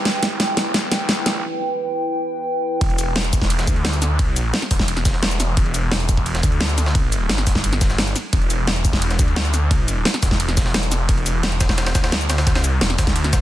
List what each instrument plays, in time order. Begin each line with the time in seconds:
Already playing: analog synth pad E4 B4 G5
0.05 detuned saw bass E1, snare, closed hi-hat
0.23 snare, closed hi-hat
0.40 snare, closed hi-hat
0.57 snare, closed hi-hat
0.74 snare, closed hi-hat
0.92 detuned saw bass D2, snare, closed hi-hat
1.09 snare, closed hi-hat
1.26 snare, closed hi-hat
2.81 detuned saw bass E1, kick, closed hi-hat, ride
2.90 ride
2.98 closed hi-hat, ride, cabasa
3.16 snare, closed hi-hat, ride
3.24 closed hi-hat
3.33 kick, closed hi-hat, ride, cabasa
3.42 kick, snare, ride
3.50 closed hi-hat, ride
3.59 snare, closed hi-hat
3.67 detuned saw bass D2, kick, closed hi-hat, ride, cabasa
3.76 ride
3.85 snare, closed hi-hat, ride
3.93 closed hi-hat, cabasa
4.02 snare, closed hi-hat, cabasa
4.19 kick, closed hi-hat, ride
4.36 closed hi-hat, ride, cabasa
4.54 snare, closed hi-hat, ride
4.62 snare, closed hi-hat
4.71 detuned saw bass E1, kick, snare, open hi-hat, ride, cabasa
4.79 kick, snare, ride
4.88 closed hi-hat, ride
4.97 snare, closed hi-hat
5.05 kick, snare, closed hi-hat, open hi-hat, cabasa
5.14 snare
5.23 snare, closed hi-hat, ride
5.31 closed hi-hat, cabasa
5.40 snare, closed hi-hat, ride, cabasa
5.57 detuned saw bass E1, kick, closed hi-hat, ride
5.66 ride
5.74 closed hi-hat, ride, cabasa
5.92 snare, closed hi-hat, ride
6.00 closed hi-hat
6.09 kick, closed hi-hat, ride, cabasa
6.17 kick, ride
6.26 closed hi-hat, ride
6.35 snare, closed hi-hat
6.43 detuned saw bass D2, kick, closed hi-hat, ride, cabasa
6.52 ride
6.61 snare, closed hi-hat, ride
6.69 closed hi-hat, cabasa
6.78 snare, closed hi-hat, ride, cabasa
6.86 snare
6.95 kick, closed hi-hat, ride
7.12 closed hi-hat, ride, cabasa
7.29 detuned saw bass G1, snare, closed hi-hat, ride
7.38 snare, closed hi-hat
7.47 kick, snare, open hi-hat, ride, cabasa
7.55 kick, snare, ride
7.64 closed hi-hat, ride
7.73 snare, closed hi-hat
7.81 kick, snare, closed hi-hat, open hi-hat, cabasa
7.90 snare, cabasa
7.98 snare, closed hi-hat, ride
8.07 closed hi-hat, cabasa
8.16 snare, closed hi-hat, ride, cabasa
8.33 detuned saw bass E1, kick, closed hi-hat, ride
8.42 ride
8.50 closed hi-hat, ride, cabasa
8.67 snare, closed hi-hat, ride
8.76 closed hi-hat
8.85 kick, closed hi-hat, ride, cabasa
8.93 kick, snare, ride
9.02 closed hi-hat, ride
9.11 snare, closed hi-hat
9.19 detuned saw bass D2, kick, closed hi-hat, ride, cabasa
9.28 ride
9.36 snare, closed hi-hat, ride
9.45 closed hi-hat, cabasa
9.54 snare, closed hi-hat, cabasa
9.71 kick, closed hi-hat, ride
9.88 closed hi-hat, ride, cabasa
10.05 snare, closed hi-hat, ride
10.14 snare, closed hi-hat
10.23 detuned saw bass E1, kick, snare, open hi-hat, ride, cabasa
10.31 kick, snare, ride
10.40 closed hi-hat, ride
10.49 snare, closed hi-hat
10.57 kick, snare, closed hi-hat, open hi-hat, cabasa
10.66 snare
10.74 snare, closed hi-hat, ride
10.83 closed hi-hat, cabasa
10.92 snare, closed hi-hat, ride, cabasa
11.09 detuned saw bass E1, kick, closed hi-hat, ride
11.17 ride
11.26 closed hi-hat, ride, cabasa
11.43 snare, closed hi-hat, ride
11.52 closed hi-hat
11.61 kick, snare, closed hi-hat, ride, cabasa
11.69 kick, snare, ride
11.78 snare, closed hi-hat, ride
11.86 snare, closed hi-hat, ride
11.95 detuned saw bass D2, kick, snare, closed hi-hat, ride, cabasa
12.04 snare, ride
12.12 snare, closed hi-hat, ride
12.21 closed hi-hat, cabasa
12.30 snare, closed hi-hat, ride, cabasa
12.38 snare, ride
12.47 kick, snare, closed hi-hat, ride
12.55 detuned saw bass C#2, snare, ride
12.64 closed hi-hat, ride, cabasa
12.81 detuned saw bass E1, snare, closed hi-hat, ride
12.90 snare, closed hi-hat
12.98 detuned saw bass D2, kick, snare, open hi-hat, ride, cabasa
13.07 kick, snare, closed hi-hat, ride
13.16 closed hi-hat, ride
13.24 snare, closed hi-hat
13.33 kick, snare, closed hi-hat, ride, cabasa